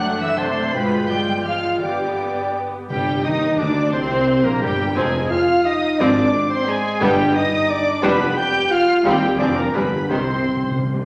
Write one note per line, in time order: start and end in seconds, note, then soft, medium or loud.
0.00 0.74 F#1 medium
0.00 0.20 F#3 loud
0.00 0.36 A3 medium
0.00 0.38 A3 medium
0.00 0.37 D4 medium
0.00 0.19 F#5 loud
0.00 0.40 F#5 medium
0.00 0.19 F#6 loud
0.20 0.38 E3 loud
0.20 0.38 E5 loud
0.20 0.38 E6 loud
0.38 0.73 C3 medium
0.38 0.73 A3 medium
0.38 0.74 A3 medium
0.38 0.55 D4 medium
0.38 0.74 D4 medium
0.38 0.74 C5 loud
0.38 0.73 C5 loud
0.38 0.74 A5 loud
0.38 0.74 C6 loud
0.56 0.74 D4 medium
0.74 2.69 G1 medium
0.74 1.10 B2 medium
0.74 1.09 G#3 medium
0.74 1.07 G#3 medium
0.74 1.07 F4 medium
0.74 1.09 F4 medium
0.74 1.09 B4 loud
0.74 1.10 B4 medium
0.74 1.12 G5 medium
0.74 1.10 B5 loud
1.09 1.45 G3 medium
1.09 1.44 G#3 medium
1.09 1.43 G#3 medium
1.09 1.43 F4 medium
1.09 1.44 F4 medium
1.09 1.48 D5 medium
1.09 1.45 G5 loud
1.09 1.44 G5 loud
1.09 1.45 G6 loud
1.44 1.81 F3 medium
1.44 1.80 G#3 medium
1.44 1.81 G#3 medium
1.44 1.80 F4 medium
1.44 1.81 F4 medium
1.44 1.81 F5 medium
1.44 1.82 F5 medium
1.44 1.80 F6 loud
1.80 2.54 D3 medium
1.80 2.72 B3 medium
1.80 2.71 B3 medium
1.80 2.73 G4 medium
1.80 2.52 D5 medium
1.80 2.53 D5 medium
1.80 2.71 G5 medium
1.80 2.52 D6 medium
2.89 3.22 G1 medium
2.89 3.23 G1 medium
2.89 3.22 G2 medium
2.89 3.38 C3 loud
2.89 3.22 G3 medium
2.89 3.22 G4 medium
2.89 3.22 G5 loud
3.23 3.58 D#2 loud
3.23 3.59 D#2 medium
3.23 3.59 D#3 medium
3.23 3.58 D#4 medium
3.23 3.58 D#4 loud
3.23 3.59 D#5 loud
3.23 3.59 D#5 medium
3.23 3.58 D#5 medium
3.23 3.59 D#6 loud
3.58 3.92 D2 loud
3.58 3.93 D2 medium
3.58 3.93 D3 medium
3.58 3.93 D4 medium
3.58 3.93 D5 loud
3.58 3.92 D5 medium
3.58 3.94 D5 medium
3.58 3.93 D6 loud
3.91 4.46 C2 loud
3.91 4.44 C2 medium
3.91 4.44 C3 loud
3.91 4.44 C4 loud
3.91 4.45 C4 loud
3.91 4.44 C5 loud
3.91 4.46 C5 loud
3.91 4.45 C5 medium
3.91 4.45 C6 loud
4.44 4.61 A#1 loud
4.44 4.62 A#1 loud
4.44 4.62 A#2 loud
4.44 4.62 A#3 loud
4.44 4.62 A#3 medium
4.44 4.51 A#4 loud
4.44 4.62 A#4 medium
4.44 4.62 A#5 loud
4.61 4.96 G1 loud
4.61 4.95 G1 loud
4.61 4.96 G2 medium
4.61 4.96 G3 medium
4.61 4.96 G4 loud
4.61 4.96 G4 medium
4.61 4.97 G4 medium
4.61 4.96 G5 loud
4.95 5.25 F1 medium
4.95 5.25 F2 loud
4.95 5.12 F3 medium
4.95 5.30 G#3 loud
4.95 5.12 C4 medium
4.95 5.12 D#4 medium
4.95 5.30 G#4 loud
4.95 5.30 G#4 medium
4.95 5.12 C5 medium
4.95 5.30 G#5 loud
5.30 5.65 F4 loud
5.30 5.67 F5 loud
5.30 5.65 F5 loud
5.30 5.64 F6 loud
5.65 5.98 D#4 loud
5.65 5.99 D#5 loud
5.65 6.03 D#5 loud
5.65 5.99 D#6 loud
5.98 6.27 G#1 loud
5.98 6.27 G#1 medium
5.98 6.28 G#2 loud
5.98 6.15 F3 loud
5.98 6.15 C4 loud
5.98 6.49 D4 loud
5.98 6.15 F4 medium
5.98 6.15 C5 loud
5.98 6.27 D5 loud
5.98 6.49 D5 loud
5.98 6.50 D6 loud
6.49 6.66 C4 loud
6.49 6.67 C5 loud
6.49 6.67 C6 loud
6.65 7.00 G#3 loud
6.65 7.00 G#4 loud
6.65 7.02 G#5 loud
7.00 7.29 G1 loud
7.00 7.29 G2 loud
7.00 7.48 G2 loud
7.00 7.34 G3 loud
7.00 7.17 G3 loud
7.00 7.17 B3 loud
7.00 7.17 D4 loud
7.00 7.35 G4 loud
7.00 7.37 G4 loud
7.00 7.17 G4 loud
7.00 7.35 G5 loud
7.34 7.68 D#4 loud
7.34 7.69 D#5 loud
7.34 7.68 D#5 loud
7.34 7.68 D#6 loud
7.69 8.02 D4 loud
7.69 8.03 D5 loud
7.69 8.03 D6 loud
8.02 8.31 F1 loud
8.02 8.32 F1 loud
8.02 8.32 F2 loud
8.02 8.19 G3 loud
8.02 8.37 B3 loud
8.02 8.19 D4 loud
8.02 8.19 G4 loud
8.02 8.36 B4 loud
8.02 8.38 B4 loud
8.02 8.37 B5 loud
8.36 8.69 G4 loud
8.36 8.73 G5 loud
8.36 8.70 G5 loud
8.36 8.71 G6 loud
8.70 9.04 F4 loud
8.70 9.05 F5 loud
8.70 9.04 F5 loud
8.70 9.05 F6 loud
9.04 9.33 D#2 loud
9.04 9.34 D#2 loud
9.04 9.39 G3 loud
9.04 9.21 G3 loud
9.04 9.21 C4 loud
9.04 9.21 D#4 medium
9.04 9.21 G4 loud
9.04 9.39 G4 loud
9.04 9.41 G4 loud
9.04 9.39 G5 loud
9.39 9.68 F1 medium
9.39 9.68 F1 loud
9.39 9.68 F2 loud
9.39 9.55 F3 medium
9.39 9.55 C4 medium
9.39 9.56 D4 loud
9.39 9.55 D4 medium
9.39 9.55 G#4 loud
9.39 9.45 D5 loud
9.39 9.57 D5 loud
9.39 9.56 D6 loud
9.56 9.74 A#3 loud
9.56 9.62 A#4 loud
9.56 9.76 A#4 loud
9.56 9.74 A#5 loud
9.73 10.03 G1 medium
9.73 10.04 G2 medium
9.73 9.90 F3 medium
9.73 9.90 G3 medium
9.73 10.10 B3 medium
9.73 9.91 D4 medium
9.73 9.91 G#4 medium
9.73 10.09 B4 medium
9.73 10.08 B4 medium
9.73 10.09 B5 medium
10.09 10.39 C2 medium
10.09 10.39 C3 medium
10.09 10.17 C3 soft
10.09 10.26 D#3 medium
10.09 10.26 G3 medium
10.09 10.26 C4 medium
10.09 10.80 C4 medium
10.09 10.26 G4 medium
10.09 10.79 C5 medium
10.09 10.81 C6 loud
10.18 10.24 C3 soft
10.25 10.32 C3 soft
10.33 10.39 C3 medium
10.40 10.47 C3 medium
10.48 10.55 C3 medium
10.56 10.62 C3 medium
10.63 10.70 C3 medium
10.71 10.77 C3 medium
10.78 10.85 C3 loud
10.86 10.93 C3 medium
10.94 11.00 C3 loud
11.01 11.05 C3 medium